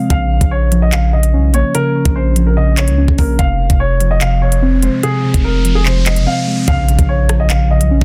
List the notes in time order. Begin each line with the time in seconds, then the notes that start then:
Already playing: C3 F3 G#3 C4
0.10 A#1 F5, kick, closed hi-hat
0.31 C#3
0.41 A#1, kick, closed hi-hat
0.51 C#5
0.72 F3, closed hi-hat
0.82 D#5
0.92 C#3 F5, clap, closed hi-hat
1.13 C#3 D#5
1.23 closed hi-hat
1.34 C2 C#4
1.49 A#1
1.54 A#3 C#5, closed hi-hat
1.75 C#3 A#4, closed hi-hat
1.95 C#3
2.05 A#1, kick, closed hi-hat
2.16 C5
2.36 F3, closed hi-hat
2.47 A#4
2.57 C#3 D#5
2.77 C#3 C#5, clap, closed hi-hat
2.88 C#2, closed hi-hat
2.98 C#4
3.08 A#1, kick
3.18 A#1 A#3 A#4, kick, open hi-hat
3.39 F1 C3 F5, kick, closed hi-hat, riser
3.60 C3
3.70 F1, kick, closed hi-hat
3.80 C#5
4.00 F3, closed hi-hat
4.11 D#5
4.21 C3 F5, clap, closed hi-hat
4.42 C3 C#5
4.52 closed hi-hat
4.62 C4
4.83 G#3 C5, closed hi-hat
5.03 C3 G#4, closed hi-hat
5.24 C3
5.34 F1, kick, closed hi-hat
5.45 A#4
5.65 F3, closed hi-hat
5.75 G#4
5.85 C3 C5, clap
6.06 C3 D#5, clap, closed hi-hat
6.16 F#1, closed hi-hat
6.27 C4 F5
6.47 G#3
6.68 A#1 C#3 F5, kick, closed hi-hat, impact
6.88 C#3, closed hi-hat
6.99 A#1, kick, closed hi-hat
7.09 C#5
7.29 F3, cross-stick, closed hi-hat
7.40 D#5
7.50 C#3 F5, clap, closed hi-hat
7.71 C#3 D#5
7.81 C2, closed hi-hat
7.91 A#1 C#4
8.01 A#1, kick